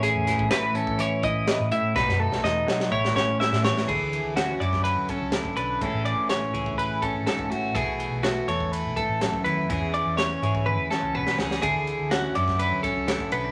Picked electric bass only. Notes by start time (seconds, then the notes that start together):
0.15 E2
0.39 A1
1.23 A1
1.60 A2
1.96 B1
2.08 F#2
2.32 B1
2.44 E2
2.91 A1
3.16 A1
3.52 A2
3.88 D2
4.01 D2
4.25 D2
4.60 F#2
4.96 D2
5.21 C#2
5.57 B1
5.81 A1
5.94 A1
6.17 A1
6.53 C#2
6.90 A1
7.14 G#1
7.50 A1
7.75 B1
7.87 B1
8.11 B1
8.48 E2
8.84 B1
9.09 A1
9.45 D#2
9.70 E2
9.81 E2
10.06 E2
10.42 G#2
10.79 E2
11.03 C#2
11.39 C#2
11.63 D2
11.76 D2
12.00 D2
12.36 F#2
12.72 D2
12.96 C#2
13.32 B1